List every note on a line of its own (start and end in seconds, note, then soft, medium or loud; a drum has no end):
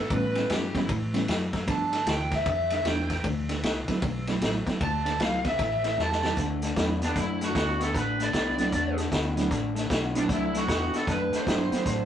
0.00 0.11 A4 medium
0.10 0.33 A2 medium
0.10 0.48 A2 medium
0.10 0.69 E3 medium
0.10 0.33 E3 medium
0.10 0.70 G3 medium
0.10 0.70 B3 medium
0.10 0.70 C#4 medium
0.10 0.50 B4 medium
0.10 kick medium
0.10 ride medium
0.35 0.49 A2 medium
0.35 0.49 E3 medium
0.35 snare soft
0.35 ride soft
0.50 0.88 G2 medium
0.50 0.72 A2 medium
0.50 0.72 F#3 medium
0.50 0.77 G4 medium
0.50 snare medium
0.50 ride medium
0.74 0.87 A2 medium
0.74 0.87 E3 medium
0.74 0.88 F#3 medium
0.74 0.87 G3 medium
0.74 0.87 B3 medium
0.74 0.88 C#4 medium
0.74 0.90 E4 medium
0.74 kick medium
0.74 snare soft
0.74 ride medium
0.89 1.27 A2 medium
0.89 1.12 A2 medium
0.89 1.12 E3 medium
0.89 kick loud
0.89 ride medium
1.13 1.27 A2 medium
1.13 1.26 E3 medium
1.13 1.27 E3 medium
1.13 1.26 G3 medium
1.13 1.27 B3 medium
1.13 1.27 C#4 medium
1.13 snare soft
1.13 ride medium
1.28 1.66 F#2 medium
1.28 1.51 A2 medium
1.28 1.51 F#3 medium
1.28 snare medium
1.28 ride medium
1.53 1.66 A2 medium
1.53 1.66 F#3 medium
1.53 kick medium
1.53 snare soft
1.53 ride medium
1.66 2.05 G2 medium
1.66 1.90 G2 medium
1.66 1.90 D3 medium
1.66 1.89 F3 medium
1.66 1.89 A3 medium
1.66 1.90 B3 soft
1.66 1.90 D4 medium
1.66 2.07 A5 medium
1.66 kick loud
1.66 snare soft
1.66 ride medium
1.93 2.05 G2 medium
1.93 2.06 D3 medium
1.93 snare soft
1.93 ride medium
2.06 2.44 D2 medium
2.06 2.29 G2 medium
2.06 2.29 E3 medium
2.06 snare medium
2.06 ride medium
2.11 2.35 G5 medium
2.32 2.45 G2 medium
2.32 2.45 E3 medium
2.32 2.47 E5 medium
2.32 kick medium
2.32 snare soft
2.32 ride medium
2.46 2.83 F2 medium
2.46 2.68 G2 medium
2.46 2.69 D3 medium
2.46 2.71 E5 medium
2.46 kick medium
2.46 ride medium
2.70 2.84 G2 medium
2.70 2.84 D3 medium
2.70 2.88 E5 medium
2.70 snare soft
2.70 ride medium
2.84 3.22 E2 medium
2.84 3.08 G2 medium
2.84 3.08 E3 medium
2.84 3.07 F3 medium
2.84 3.07 A3 soft
2.84 3.07 B3 soft
2.84 3.08 D4 medium
2.84 snare medium
2.84 ride medium
2.88 3.25 G5 medium
3.10 3.23 G2 medium
3.10 3.23 E3 medium
3.10 kick medium
3.10 snare soft
3.10 ride medium
3.24 3.62 D2 medium
3.24 3.47 D3 medium
3.24 3.47 A3 medium
3.24 kick loud
3.24 ride medium
3.49 3.62 D3 medium
3.49 3.62 A3 medium
3.49 snare soft
3.49 ride medium
3.63 3.86 C2 medium
3.63 3.86 D3 medium
3.63 3.86 B3 medium
3.63 snare medium
3.63 ride medium
3.88 4.01 D3 medium
3.88 4.01 F#3 medium
3.88 4.01 A3 soft
3.88 4.01 B3 medium
3.88 4.01 C4 medium
3.88 4.02 E4 medium
3.88 muted fingered electric bass stroke soft
3.88 kick medium
3.88 snare soft
3.88 ride medium
4.02 4.40 B1 medium
4.02 4.25 D3 medium
4.02 4.25 A3 medium
4.02 kick loud
4.02 ride medium
4.27 4.41 D3 medium
4.27 4.78 F#3 medium
4.27 4.78 A3 medium
4.27 4.41 A3 medium
4.27 4.78 C4 medium
4.27 4.79 E4 medium
4.27 snare soft
4.27 ride soft
4.41 4.65 A1 medium
4.41 4.64 D3 medium
4.41 4.64 B3 medium
4.41 snare medium
4.41 ride medium
4.66 4.79 D3 medium
4.66 4.80 B3 medium
4.66 kick medium
4.66 snare soft
4.66 ride soft
4.81 5.18 D2 medium
4.81 5.03 D3 medium
4.81 5.03 A3 medium
4.81 5.20 A5 medium
4.81 kick medium
4.81 ride medium
5.06 5.19 D3 medium
5.06 5.19 A3 medium
5.06 snare soft
5.06 ride soft
5.19 5.57 C2 medium
5.19 5.42 D3 medium
5.19 5.42 F#3 soft
5.19 5.43 A3 soft
5.19 5.43 B3 medium
5.19 5.43 C4 soft
5.19 5.43 E4 medium
5.19 5.45 F5 medium
5.19 snare loud
5.19 ride medium
5.45 5.58 D3 medium
5.45 5.58 B3 medium
5.45 5.60 E5 medium
5.45 kick medium
5.45 snare soft
5.45 ride medium
5.58 5.97 A1 medium
5.58 5.81 A2 medium
5.58 5.82 E3 medium
5.58 5.85 E5 medium
5.58 kick loud
5.58 snare soft
5.58 ride medium
5.84 5.97 A2 medium
5.84 5.97 E3 medium
5.84 5.99 E5 medium
5.84 snare soft
5.84 ride medium
5.98 6.36 E2 medium
5.98 6.21 A2 medium
5.98 6.21 F#3 medium
5.98 6.37 A5 medium
5.98 snare soft
6.12 snare medium
6.23 6.36 D2 medium
6.23 6.36 A2 medium
6.23 6.36 F#3 medium
6.23 6.36 A3 medium
6.23 6.36 C4 medium
6.23 6.36 E4 medium
6.23 snare medium
6.37 6.75 D2 medium
6.37 6.60 D3 medium
6.37 6.60 A3 medium
6.37 kick medium
6.37 snare soft
6.37 closed hi-hat medium
6.62 6.75 D3 medium
6.62 6.76 A3 medium
6.62 snare soft
6.62 closed hi-hat medium
6.76 7.15 E2 medium
6.76 6.99 D3 medium
6.76 6.99 F#3 medium
6.76 6.99 A3 medium
6.76 7.00 B3 medium
6.76 6.99 C4 medium
6.76 6.99 D4 medium
6.76 6.99 E4 medium
6.76 kick medium
6.76 snare medium
6.76 closed hi-hat medium
7.02 7.15 D3 medium
7.02 7.15 B3 medium
7.02 7.17 D4 medium
7.02 snare soft
7.02 closed hi-hat medium
7.16 7.54 F#2 medium
7.16 7.39 D3 medium
7.16 7.39 A3 medium
7.16 7.44 E4 medium
7.16 kick medium
7.16 snare soft
7.16 closed hi-hat medium
7.41 7.53 D3 medium
7.41 7.54 A3 medium
7.41 7.80 F#4 medium
7.41 snare soft
7.41 closed hi-hat medium
7.54 7.93 D2 medium
7.54 7.77 D3 medium
7.54 7.78 B3 medium
7.54 kick medium
7.54 snare loud
7.54 closed hi-hat medium
7.79 7.93 D3 medium
7.79 7.93 B3 medium
7.79 7.97 A4 medium
7.79 snare soft
7.79 closed hi-hat soft
7.94 8.32 A1 medium
7.94 8.17 D3 medium
7.94 8.17 A3 medium
7.94 8.20 B4 medium
7.94 kick medium
7.94 snare soft
7.94 closed hi-hat medium
8.19 8.32 D3 medium
8.19 8.32 A3 medium
8.19 snare soft
8.19 closed hi-hat medium
8.23 8.97 D5 medium
8.33 8.71 C2 medium
8.33 8.56 D3 medium
8.33 8.56 B3 medium
8.33 kick medium
8.33 snare medium
8.33 closed hi-hat medium
8.57 8.71 D3 medium
8.57 8.71 F#3 medium
8.57 8.71 A3 medium
8.57 8.72 B3 medium
8.57 8.71 C4 medium
8.57 8.71 D4 medium
8.57 8.71 E4 medium
8.57 snare soft
8.57 closed hi-hat medium
8.72 9.10 E2 medium
8.72 8.95 D3 medium
8.72 8.96 A3 medium
8.72 kick medium
8.72 snare soft
8.72 closed hi-hat medium
8.97 9.10 D3 medium
8.97 9.11 A3 medium
8.97 snare soft
8.97 closed hi-hat medium
9.11 9.50 D2 medium
9.11 9.34 D3 medium
9.11 9.34 B3 medium
9.11 kick medium
9.11 snare medium
9.11 closed hi-hat medium
9.36 9.49 D3 medium
9.36 9.49 F#3 medium
9.36 9.49 A3 medium
9.36 9.50 B3 medium
9.36 9.50 C4 medium
9.36 9.50 D4 medium
9.36 9.50 E4 medium
9.36 snare soft
9.36 closed hi-hat medium
9.50 9.89 A1 medium
9.50 9.73 D3 medium
9.50 9.73 A3 medium
9.50 kick medium
9.50 snare soft
9.50 closed hi-hat medium
9.75 9.88 D3 medium
9.75 9.89 A3 medium
9.75 snare soft
9.75 closed hi-hat medium
9.90 10.28 B1 medium
9.90 10.12 D3 medium
9.90 10.12 B3 medium
9.90 kick medium
9.90 snare medium
9.90 closed hi-hat medium
10.14 10.27 D3 medium
10.14 10.66 F#3 medium
10.14 10.66 A3 medium
10.14 10.28 B3 medium
10.14 10.66 C4 medium
10.14 10.66 D4 medium
10.14 10.66 E4 medium
10.14 snare soft
10.14 closed hi-hat medium
10.18 10.33 D4 medium
10.28 10.67 C2 medium
10.28 10.51 D3 medium
10.28 10.51 A3 medium
10.28 kick medium
10.28 snare soft
10.28 closed hi-hat medium
10.33 10.57 E4 medium
10.53 10.67 D3 medium
10.53 10.67 A3 medium
10.53 snare soft
10.53 closed hi-hat medium
10.57 10.94 F#4 medium
10.68 10.92 E2 medium
10.68 10.91 D3 medium
10.68 10.91 B3 medium
10.68 kick medium
10.68 snare loud
10.68 closed hi-hat medium
10.92 11.06 D3 medium
10.92 11.06 B3 medium
10.92 11.09 A4 medium
10.92 muted fingered electric bass stroke soft
10.92 snare soft
10.92 closed hi-hat soft
11.07 11.31 F#2 medium
11.07 11.30 D3 medium
11.07 11.30 A3 medium
11.07 11.36 B4 medium
11.07 kick medium
11.07 snare soft
11.07 closed hi-hat medium
11.32 11.45 D3 medium
11.32 11.45 A3 medium
11.32 12.05 C5 medium
11.32 muted fingered electric bass stroke soft
11.32 snare soft
11.32 closed hi-hat medium
11.46 11.70 G2 medium
11.46 11.69 D3 medium
11.46 12.05 F#3 soft
11.46 12.05 A3 soft
11.46 11.69 B3 medium
11.46 12.05 C4 soft
11.46 12.05 D4 soft
11.46 12.05 E4 medium
11.46 kick medium
11.46 snare medium
11.46 closed hi-hat medium
11.71 11.84 D3 medium
11.71 11.85 B3 medium
11.71 muted fingered electric bass stroke soft
11.71 snare soft
11.71 closed hi-hat medium
11.86 12.05 A2 medium
11.86 12.05 D3 medium
11.86 12.05 A3 medium
11.86 kick medium
11.86 snare soft
11.86 closed hi-hat medium